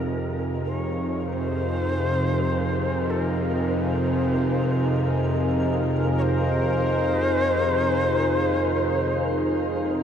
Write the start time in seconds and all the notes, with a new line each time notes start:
Already playing: F2 C3 D#4 F4 G#4 A#4
0.66 C#5
1.26 C5
3.10 A4
3.21 A#4
3.72 B4
3.86 C5
4.47 A#4
6.18 C5 C#5